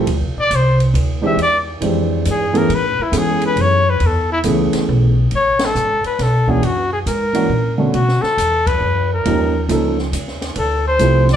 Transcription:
0.06 0.23 D2 medium
0.06 ride medium
0.21 0.36 C2 medium
0.37 0.50 A1 medium
0.37 0.57 D5 loud
0.51 0.93 C2 medium
0.51 hi-hat pedal medium
0.51 ride medium
0.55 0.82 C5 medium
0.80 ride soft
0.94 1.36 D2 loud
0.94 ride medium
1.21 1.36 E3 medium
1.21 1.36 G#3 medium
1.21 1.36 C4 medium
1.21 1.36 D4 medium
1.21 1.37 G4 medium
1.26 1.39 E5 medium
1.37 1.80 E2 medium
1.37 ride medium
1.43 1.59 D5 loud
1.80 2.24 F2 medium
1.80 2.48 E3 medium
1.80 2.48 G#3 medium
1.80 2.49 C4 medium
1.80 2.49 D4 medium
1.80 2.49 G4 medium
1.80 ride medium
2.25 2.68 G2 medium
2.25 hi-hat pedal medium
2.25 ride medium
2.31 2.59 G#4 medium
2.53 2.67 E3 medium
2.53 2.67 A3 medium
2.53 2.67 B3 medium
2.53 2.68 C#4 medium
2.53 2.68 G#4 medium
2.53 ride soft
2.58 2.76 A#4 medium
2.69 2.96 A2 medium
2.69 ride medium
2.75 3.04 B4 loud
2.99 3.19 E4 medium
2.99 muted upright bass stroke soft
3.11 3.55 G#2 medium
3.11 3.79 E3 medium
3.11 3.79 B3 medium
3.11 3.80 C#4 medium
3.11 3.80 G#4 medium
3.11 3.79 A4 medium
3.11 hi-hat pedal medium
3.11 ride medium
3.18 3.44 G#4 medium
3.42 ride medium
3.46 3.63 B4 loud
3.56 3.99 F#2 loud
3.56 ride medium
3.61 3.91 C#5 loud
3.90 4.08 B4 medium
4.00 4.43 E2 medium
4.00 ride medium
4.07 4.32 A4 medium
4.32 4.40 E4 loud
4.43 4.71 C#2 loud
4.43 5.11 E3 medium
4.43 5.11 A3 medium
4.43 5.11 B3 medium
4.43 5.11 C#4 medium
4.43 5.12 G#4 medium
4.43 hi-hat pedal medium
4.43 ride medium
4.73 muted upright bass stroke soft
4.73 snare medium
4.73 ride medium
4.89 5.30 B1 loud
5.31 5.74 A1 medium
5.31 ride soft
5.36 5.67 C#5 loud
5.59 snare medium
5.59 ride medium
5.65 6.06 A4 loud
5.75 6.02 G#1 medium
5.75 hi-hat pedal medium
6.04 6.24 B4 medium
6.04 muted upright bass stroke soft
6.04 ride soft
6.19 6.61 B1 medium
6.19 6.51 A4 medium
6.19 snare soft
6.19 ride medium
6.47 6.61 E3 medium
6.47 6.61 A#3 medium
6.47 6.61 C#4 medium
6.47 6.61 D4 medium
6.47 6.61 F#4 medium
6.47 6.66 G#4 medium
6.47 kick medium
6.63 7.05 F#2 medium
6.63 6.92 F#4 medium
6.63 ride medium
6.93 6.99 G#4 medium
7.06 7.49 G#2 medium
7.06 7.76 A#4 medium
7.06 hi-hat pedal medium
7.06 ride medium
7.33 7.48 E3 medium
7.33 7.48 A#3 medium
7.33 7.48 C#4 medium
7.33 7.48 D4 medium
7.33 7.49 F#4 medium
7.33 ride medium
7.49 7.92 A#2 medium
7.78 7.92 D3 medium
7.78 7.92 A3 medium
7.78 7.92 B3 medium
7.78 7.92 C#4 medium
7.78 7.93 F#4 medium
7.93 8.21 B2 medium
7.93 8.23 F#4 medium
7.93 ride medium
8.08 snare soft
8.22 8.68 A4 loud
8.22 muted upright bass stroke soft
8.22 snare soft
8.37 8.80 E2 medium
8.37 hi-hat pedal medium
8.37 ride medium
8.67 9.11 B4 medium
8.67 kick medium
8.67 ride medium
8.81 9.23 F#2 medium
9.13 9.66 A#4 medium
9.25 9.68 D#2 medium
9.25 9.52 F3 medium
9.25 9.52 A#3 medium
9.25 9.52 C#4 medium
9.25 9.52 D#4 medium
9.25 9.52 G4 medium
9.25 ride medium
9.68 10.11 C#2 medium
9.68 9.95 F3 medium
9.68 9.96 A#3 medium
9.68 9.96 C#4 medium
9.68 9.96 D#4 medium
9.68 9.96 A4 medium
9.68 hi-hat pedal soft
9.68 ride medium
9.98 snare soft
10.12 10.55 D#2 medium
10.12 hi-hat pedal medium
10.12 ride medium
10.28 snare soft
10.41 snare soft
10.41 ride medium
10.56 10.98 D2 medium
10.56 10.85 A4 medium
10.56 ride medium
10.87 11.27 C5 loud
10.99 11.36 C2 medium
10.99 11.26 F3 medium
10.99 11.27 A3 medium
10.99 11.27 C4 medium
10.99 11.27 E4 medium
10.99 11.27 G4 medium
10.99 hi-hat pedal medium
10.99 ride medium
11.29 snare soft
11.29 ride soft
11.33 11.36 D5 loud

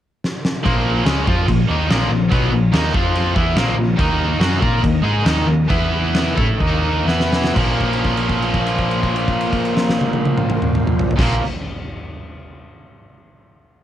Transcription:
0.24 snare medium
0.45 snare loud
0.63 1.03 A#1 medium
0.63 1.04 A#2 medium
0.63 1.05 F3 medium
0.63 1.06 A#3 loud
0.63 3.33 F4 medium
0.63 2.91 C#5 medium
0.63 2.91 A#5 medium
0.63 kick loud
0.63 crash medium
1.05 1.25 C#2 loud
1.05 1.25 C#3 medium
1.05 1.26 G#3 medium
1.05 1.26 C#4 loud
1.05 snare loud
1.05 crash medium
1.26 1.46 F2 loud
1.26 1.46 F3 loud
1.26 1.47 C4 medium
1.26 1.47 F4 loud
1.26 kick loud
1.47 1.67 A#1 medium
1.47 1.64 A#2 medium
1.47 1.64 F3 medium
1.47 kick medium
1.47 crash medium
1.69 1.88 D#2 medium
1.69 1.88 D#3 medium
1.69 1.89 A#3 loud
1.69 1.89 D#4 medium
1.88 2.09 A#1 loud
1.88 2.08 A#2 medium
1.88 2.09 F3 medium
1.88 2.10 A#3 medium
1.88 snare loud
1.88 crash medium
2.09 2.29 A#1 medium
2.09 2.26 A#2 medium
2.09 2.27 F3 medium
2.28 2.50 B1 medium
2.28 2.50 B2 loud
2.28 2.50 F#3 loud
2.28 2.50 B3 medium
2.28 kick loud
2.28 crash medium
2.50 2.70 A#1 medium
2.50 2.68 A#2 medium
2.50 2.68 F3 medium
2.71 2.92 D#2 medium
2.71 2.92 D#3 medium
2.71 2.92 A#3 medium
2.71 2.93 D#4 loud
2.71 snare loud
2.71 crash medium
2.92 3.32 F2 loud
2.92 3.33 F3 medium
2.92 3.34 C4 loud
2.92 3.35 F4 loud
2.92 3.35 C5 medium
2.92 3.35 C6 medium
2.92 kick loud
3.15 crash medium
3.34 3.55 E2 medium
3.34 3.55 E3 medium
3.34 3.55 B3 medium
3.34 3.56 E4 loud
3.34 3.98 F4 medium
3.34 3.98 C#5 medium
3.34 3.97 A#5 medium
3.34 kick loud
3.56 3.75 A#1 medium
3.56 3.76 A#2 medium
3.56 3.77 F3 medium
3.56 3.77 A#3 medium
3.56 snare loud
3.56 crash medium
3.75 3.96 A#1 medium
3.75 3.94 A#2 medium
3.75 3.94 F3 medium
3.96 4.37 D#2 medium
3.96 4.38 D#3 medium
3.96 4.39 A#3 loud
3.96 4.39 D#4 loud
3.96 5.67 D#4 medium
3.96 5.67 A#4 medium
3.96 5.67 A#5 medium
3.96 kick loud
3.96 crash medium
4.39 4.59 F#2 medium
4.39 4.60 F#3 loud
4.39 4.60 C#4 medium
4.39 4.61 F#4 loud
4.39 snare loud
4.39 crash medium
4.60 4.81 A#2 loud
4.60 4.81 A#3 loud
4.60 4.82 F4 loud
4.60 4.82 A#4 loud
4.60 kick medium
4.82 5.01 D#2 medium
4.82 4.99 D#3 medium
4.82 5.00 A#3 medium
4.82 kick medium
4.82 crash medium
5.02 5.23 G#2 loud
5.02 5.24 G#3 medium
5.02 5.25 D#4 medium
5.02 5.25 G#4 medium
5.24 5.45 D#2 medium
5.24 5.45 D#3 medium
5.24 5.45 A#3 medium
5.24 5.47 D#4 loud
5.24 snare loud
5.24 crash medium
5.46 5.67 D#2 medium
5.46 5.64 D#3 medium
5.46 5.64 A#3 medium
5.67 6.33 E2 medium
5.67 6.35 E3 medium
5.67 6.35 B3 loud
5.67 6.35 E4 loud
5.67 6.36 E4 medium
5.67 6.36 B4 medium
5.67 6.37 B5 medium
5.67 kick loud
5.67 crash medium
6.15 snare loud
6.15 crash medium
6.33 6.58 A3 medium
6.33 7.04 D#4 medium
6.33 6.59 E4 loud
6.33 7.04 A#4 medium
6.33 7.05 A#5 medium
6.37 6.58 A2 loud
6.37 6.59 A4 loud
6.37 kick loud
6.58 7.03 D#2 loud
6.58 7.05 D#3 medium
6.58 7.05 A#3 loud
6.58 7.06 D#4 loud
6.58 kick loud
6.58 crash medium
7.04 7.50 E2 medium
7.04 7.54 E3 medium
7.04 7.55 B3 medium
7.04 7.54 E4 medium
7.04 7.55 E4 medium
7.04 7.54 B4 medium
7.04 7.54 B5 medium
7.04 snare medium
7.20 snare medium
7.32 snare medium
7.44 snare medium
7.51 11.13 A#2 medium
7.51 11.13 F3 loud
7.51 11.08 A#3 medium
7.51 11.08 F4 medium
7.51 11.07 C5 medium
7.56 11.09 A#1 medium
7.56 11.13 A#3 loud
7.56 11.14 C#4 loud
7.56 11.14 F4 loud
7.56 kick loud
7.56 crash medium
7.80 kick medium
7.80 crash soft
7.93 crash soft
8.04 kick medium
8.04 crash soft
8.17 crash soft
8.29 kick medium
8.29 crash soft
8.42 crash soft
8.54 kick medium
8.54 crash soft
8.67 crash soft
8.78 kick medium
8.78 crash soft
8.91 crash soft
9.03 kick medium
9.03 crash soft
9.16 crash soft
9.28 kick medium
9.28 crash soft
9.40 crash medium
9.52 kick medium
9.52 crash medium
9.65 crash soft
9.77 snare medium
9.89 snare medium
10.01 high tom medium
10.13 high tom medium
10.25 high tom loud
10.37 mid tom medium
10.50 mid tom loud
10.62 mid tom medium
10.75 mid tom loud
10.87 mid tom loud
11.00 floor tom loud
11.11 floor tom medium
11.16 11.39 A#1 loud
11.16 11.40 A#2 loud
11.16 11.40 F3 loud
11.16 11.41 A#3 medium
11.16 11.41 C#4 loud
11.16 11.40 F4 medium
11.16 11.40 C5 medium
11.16 kick loud
11.16 snare medium
11.16 crash loud
11.20 11.40 A#3 medium
11.20 11.43 A#3 loud
11.20 11.42 F4 loud

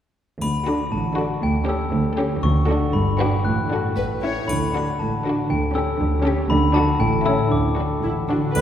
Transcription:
0.41 0.81 D2 soft
0.41 1.42 D3 soft
0.41 0.89 B5 medium
0.41 triangle soft
0.66 1.66 A3 soft
0.66 0.86 D4 soft
0.66 0.86 F#4 soft
0.66 0.86 A4 soft
0.92 1.32 A1 soft
0.92 1.32 A2 soft
0.92 1.45 F#4 soft
0.92 1.39 A5 soft
1.16 1.36 D4 soft
1.16 1.35 F#4 soft
1.16 1.36 A4 soft
1.16 1.44 D5 soft
1.42 1.82 D2 soft
1.42 1.82 D2 medium
1.42 2.41 D3 soft
1.42 1.66 G5 medium
1.67 2.95 A3 soft
1.67 1.86 C#4 soft
1.67 1.86 G4 soft
1.67 1.87 A4 soft
1.67 2.14 E6 soft
1.92 2.32 D2 medium
1.92 2.32 D2 soft
1.92 2.44 G4 soft
2.16 2.36 C#4 soft
2.16 2.35 G4 soft
2.16 2.35 A4 soft
2.16 2.44 C#5 soft
2.42 2.82 D2 medium
2.42 2.95 D3 soft
2.42 2.90 C#6 medium
2.66 2.87 D4 medium
2.66 3.18 F#4 soft
2.66 2.86 F#4 medium
2.66 2.86 A4 medium
2.66 2.95 A4 soft
2.92 3.34 G1 medium
2.92 3.46 G2 medium
2.92 3.34 G2 medium
2.92 3.17 B5 medium
3.19 3.38 D4 soft
3.19 3.38 F#4 soft
3.19 3.70 F#4 soft
3.19 3.47 B4 soft
3.19 3.38 B4 soft
3.19 3.43 G5 medium
3.45 3.86 A1 soft
3.45 3.96 A2 soft
3.45 3.86 A2 medium
3.45 3.93 F#6 soft
3.71 3.90 D4 soft
3.71 3.90 F#4 soft
3.71 3.99 F#4 soft
3.71 3.90 A4 soft
3.71 4.22 A4 soft
3.97 4.38 A1 soft
3.97 4.38 A2 soft
3.97 4.51 A2 soft
3.97 4.05 B4 soft
4.23 4.42 C#4 soft
4.23 4.51 E4 soft
4.23 4.42 E4 soft
4.23 6.74 A4 soft
4.23 4.48 C#5 soft
4.48 4.89 D2 soft
4.48 5.49 D3 soft
4.48 4.89 D3 soft
4.48 4.95 B5 medium
4.48 triangle soft
4.73 5.74 A3 soft
4.73 4.93 D4 soft
4.73 4.92 F#4 soft
4.73 4.94 A4 soft
4.99 5.40 A1 soft
4.99 5.39 A2 soft
4.99 5.52 F#4 soft
4.99 5.46 A5 soft
5.25 5.44 D4 soft
5.25 5.44 F#4 soft
5.25 5.43 A4 soft
5.25 5.52 D5 soft
5.50 5.90 D2 soft
5.50 6.48 D3 soft
5.50 5.90 D3 medium
5.50 5.73 G5 medium
5.75 7.75 A3 soft
5.75 5.94 C#4 soft
5.75 5.94 G4 soft
5.75 5.94 A4 soft
5.75 6.22 E6 soft
6.00 6.40 D2 medium
6.00 6.40 D3 medium
6.00 6.52 G4 soft
6.24 6.43 C#4 medium
6.24 6.44 G4 medium
6.24 6.43 A4 soft
6.24 6.52 C#5 soft
6.50 6.90 D2 medium
6.50 7.02 D3 medium
6.50 6.90 D3 medium
6.50 6.73 B5 medium
6.74 6.94 D4 medium
6.74 6.93 F#4 medium
6.74 7.02 F#4 soft
6.74 7.24 A4 soft
6.74 6.94 A4 medium
6.74 6.98 A5 medium
6.99 7.41 A1 medium
6.99 7.53 A2 medium
6.99 7.41 A2 medium
6.99 7.24 G5 medium
7.24 7.45 C#4 soft
7.24 7.44 E4 soft
7.24 7.53 E4 soft
7.24 8.49 A4 soft
7.24 7.45 A4 soft
7.24 7.50 E6 medium
7.51 7.92 D2 soft
7.51 8.35 D3 soft
7.51 7.92 D3 soft
7.51 8.00 D6 soft
7.76 8.61 A3 soft
7.76 7.96 D4 soft
7.76 7.96 F#4 soft
7.76 7.97 A4 soft
8.03 8.45 A1 soft
8.03 8.44 A2 soft
8.03 8.11 E4 soft
8.03 8.44 F#4 soft
8.29 8.37 D4 soft
8.29 8.49 F#4 soft
8.29 8.48 A4 soft
8.29 8.61 D5 soft
8.36 8.61 D3 soft
8.41 8.61 D4 soft
8.46 8.61 F#4 soft
8.50 8.61 A4 soft
8.55 8.61 D2 soft
8.55 8.61 D3 medium
8.55 8.61 B4 medium
8.55 triangle soft

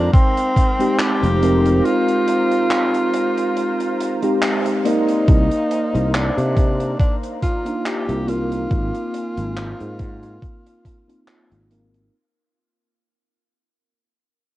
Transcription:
0.00 0.74 G#3 loud
0.00 0.74 C4 medium
0.00 0.12 D4 medium
0.00 0.75 D#4 medium
0.00 0.75 A#4 loud
0.00 5.24 C5 medium
0.00 5.24 F5 medium
0.00 5.24 A#5 medium
0.13 0.95 C4 loud
0.13 kick loud
0.13 closed hi-hat medium
0.37 closed hi-hat medium
0.56 kick medium
0.56 closed hi-hat medium
0.79 1.37 G#3 loud
0.79 1.37 C4 medium
0.79 1.38 D#4 medium
0.79 1.38 G4 loud
0.79 closed hi-hat medium
0.99 1.87 G4 loud
0.99 clap loud
0.99 closed hi-hat medium
1.23 1.80 F1 loud
1.23 closed hi-hat soft
1.41 4.16 G#3 loud
1.41 4.17 C4 medium
1.41 4.17 D#4 medium
1.41 4.18 A#4 loud
1.41 closed hi-hat medium
1.65 closed hi-hat medium
1.85 4.42 F4 loud
1.85 closed hi-hat medium
2.08 closed hi-hat medium
2.28 closed hi-hat loud
2.52 closed hi-hat medium
2.71 clap loud
2.71 closed hi-hat medium
2.94 closed hi-hat medium
3.14 closed hi-hat loud
3.38 closed hi-hat medium
3.57 closed hi-hat medium
3.80 closed hi-hat medium
4.00 closed hi-hat medium
4.22 4.80 G#3 medium
4.22 4.80 C4 medium
4.22 4.81 D#4 medium
4.22 4.81 G4 loud
4.22 closed hi-hat medium
4.42 clap loud
4.42 closed hi-hat medium
4.66 closed hi-hat medium
4.84 5.71 A#3 medium
4.84 6.10 D#4 loud
4.84 5.71 D#4 medium
4.84 5.71 A#4 loud
4.84 5.71 D5 medium
4.84 closed hi-hat loud
5.09 closed hi-hat medium
5.28 5.47 C2 loud
5.28 8.68 C5 medium
5.28 12.10 F5 medium
5.28 8.67 A#5 medium
5.28 kick loud
5.28 closed hi-hat medium
5.51 closed hi-hat medium
5.71 closed hi-hat loud
5.94 6.29 C2 loud
5.94 closed hi-hat soft
6.14 6.96 D4 medium
6.14 clap loud
6.14 closed hi-hat medium
6.37 6.94 C3 medium
6.37 closed hi-hat medium
6.57 kick loud
6.57 closed hi-hat medium
6.80 closed hi-hat medium
7.00 7.16 D4 medium
7.00 kick loud
7.00 closed hi-hat medium
7.23 closed hi-hat medium
7.42 7.87 F4 loud
7.42 kick medium
7.42 closed hi-hat loud
7.65 8.23 A#3 medium
7.65 8.23 D4 medium
7.65 8.23 D#4 medium
7.65 8.24 F4 loud
7.65 closed hi-hat medium
7.86 8.30 G4 loud
7.86 clap loud
7.86 closed hi-hat medium
8.08 8.65 C2 medium
8.08 closed hi-hat medium
8.26 11.02 A#3 medium
8.26 11.03 C4 medium
8.26 11.03 D#4 medium
8.26 11.28 F4 loud
8.26 11.04 A#4 loud
8.26 closed hi-hat medium
8.52 closed hi-hat medium
8.71 8.90 G#1 medium
8.71 12.10 A#4 medium
8.71 12.10 G#5 medium
8.71 12.10 C6 medium
8.71 kick loud
8.71 closed hi-hat medium
8.94 closed hi-hat soft
9.14 closed hi-hat loud
9.37 9.72 G#1 loud
9.37 closed hi-hat medium
9.57 clap loud
9.57 closed hi-hat medium
9.80 10.37 G#2 medium
9.80 closed hi-hat soft
9.99 kick loud
9.99 closed hi-hat loud
10.23 closed hi-hat soft
10.42 kick loud
10.42 closed hi-hat medium
10.66 closed hi-hat medium
10.85 kick medium
10.85 closed hi-hat loud
11.08 11.66 A#3 medium
11.08 11.66 C4 medium
11.08 11.66 D#4 medium
11.08 11.67 F4 medium
11.08 closed hi-hat medium
11.28 clap loud
11.28 closed hi-hat medium
11.51 12.08 G#1 medium
11.51 closed hi-hat medium
11.70 12.11 A#3 medium
11.70 12.11 C4 medium
11.70 12.12 D#4 medium
11.70 12.12 A#4 medium
11.70 closed hi-hat medium
11.94 closed hi-hat medium

